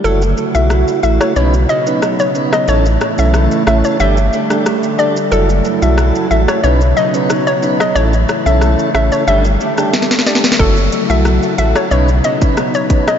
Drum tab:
HH |--------------------------------|--------------------------------|--------------------------------|--------------------------------|
SH |x-x-x-x-x-x-x-x-x-x-x-x-x-x-x-x-|x-x-x-x-x-x-x-x-x-x-x-x-x-x-x-x-|x-x-x-x-x-x-x-x-x-x-x-x-x-x-x-x-|x-x-x-x-x-x-x-x-x-x-x-x-x-x-x-x-|
SD |--------r-----r---------r-----r-|----r---r---r---------r-r-------|--------r-----r---------r-----r-|----r---r---r---------r-oooooooo|
BD |--------------------------------|--------------------------------|--------------------------------|--------------------------------|

HH |----x-------x-------x-------x---|
SH |x-x-x-x-x-x-x-x-x-x-x-x-x-x-x-x-|
SD |--------r-----r---------r-----r-|
BD |o---------------------o-----o---|